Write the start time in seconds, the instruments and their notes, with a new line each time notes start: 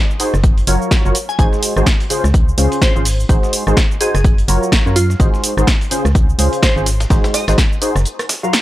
0.10 cabasa
0.20 synth stab D#4 F#4 G#4 C5, open hi-hat, tambourine, cabasa
0.34 fm bass F#1, cross-stick, snare, cabasa
0.44 kick, tambourine, cabasa
0.58 closed hi-hat, cabasa
0.67 fm bass F#1, synth stab F#3 F4 F#4 A#4 C#5, open hi-hat, tambourine, cabasa
0.82 cabasa
0.91 kick, snare, tambourine, cabasa
1.05 fm bass F#1, synth stab F#3 F4 F#4 A#4 C#5, cabasa
1.15 open hi-hat, tambourine, cabasa
1.29 synth pluck G#5, snare, cabasa
1.39 fm bass G#1, synth stab G#3 D#4 F#4 G#4 C5, synth pluck G#5, kick, tambourine, cabasa
1.53 snare, cabasa
1.63 open hi-hat, tambourine, cabasa
1.76 fm bass G#1, synth stab G#3 D#4 F#4 G#4 C5, cross-stick, cabasa
1.86 kick, snare, tambourine, cabasa
2.00 closed hi-hat, cabasa
2.10 synth stab C#3 C#4 F4 G#4 C5, open hi-hat, tambourine, cabasa
2.24 fm bass C#2, cross-stick, snare, cabasa
2.34 kick, tambourine, cabasa
2.49 cabasa
2.58 fm bass C#2, synth stab C#3 C#4 F4 G#4 C5, open hi-hat, tambourine, cabasa
2.72 closed hi-hat, cabasa
2.82 synth pluck C5, kick, snare, tambourine, cabasa
2.95 fm bass G#1, synth stab C#3 C#4 F4 G#4 C5, cabasa
3.05 open hi-hat, cabasa
3.20 cabasa
3.29 fm bass G#1, synth stab G#3 D#4 F#4 G#4 C5, kick, tambourine, cabasa
3.43 snare, cabasa
3.53 open hi-hat, tambourine, cabasa
3.67 fm bass G#1, synth stab G#3 D#4 F#4 G#4 C5, cross-stick, cabasa
3.77 kick, snare, tambourine, cabasa
3.91 cabasa
4.01 synth stab D#4 F#4 G#4 C5, synth pluck G#4, open hi-hat, tambourine, cabasa
4.15 fm bass F#1, synth pluck G#4, cross-stick, snare, cabasa
4.24 kick, tambourine, cabasa
4.38 closed hi-hat, cabasa
4.48 fm bass F#1, synth stab F#3 F4 F#4 A#4 C#5, open hi-hat, tambourine, cabasa
4.63 cabasa
4.72 kick, snare, tambourine, cabasa
4.86 fm bass F#2, synth stab F#3 F4 F#4 A#4 C#5, cabasa
4.96 synth pluck F4, open hi-hat, tambourine, cabasa
5.10 snare, cabasa
5.20 fm bass G#1, synth stab G#3 D#4 F#4 G#4 C5, kick, tambourine, cabasa
5.34 snare, cabasa
5.44 open hi-hat, tambourine, cabasa
5.57 fm bass G#1, synth stab G#3 D#4 F#4 G#4 C5, cross-stick, cabasa
5.67 kick, snare, tambourine, cabasa
5.81 closed hi-hat, cabasa
5.91 synth stab C#3 C#4 F4 G#4 C5, open hi-hat, tambourine, cabasa
6.05 fm bass C#2, cross-stick, snare, cabasa
6.15 kick, tambourine, cabasa
6.30 cabasa
6.39 fm bass C#2, synth stab C#3 C#4 F4 G#4 C5, open hi-hat, tambourine, cabasa
6.53 closed hi-hat, cabasa
6.63 synth pluck C5, kick, snare, tambourine, cabasa
6.76 fm bass G#1, synth stab C#3 C#4 F4 G#4 C5, cabasa
6.86 snare, open hi-hat, tambourine, cabasa
7.00 snare, tambourine, cabasa
7.10 fm bass G#1, synth stab G#3 D#4 F#4 G#4 C5, kick, snare, tambourine, cabasa
7.24 snare, tambourine, cabasa
7.34 synth pluck D#5, snare, open hi-hat, tambourine, cabasa
7.48 fm bass G#1, synth stab G#3 D#4 F#4 G#4 C5, cross-stick, snare, tambourine, cabasa
7.58 kick, snare, tambourine, cabasa
7.72 cabasa
7.81 synth stab D#4 F#4 G#4 C5, open hi-hat, tambourine, cabasa
7.96 fm bass F#1, cross-stick, snare, cabasa
8.05 tambourine, cabasa
8.19 cross-stick, closed hi-hat, cabasa
8.29 snare, open hi-hat, tambourine, cabasa
8.43 synth stab F#3 F4 F#4 A#4 F5, cabasa
8.53 snare, tambourine, cabasa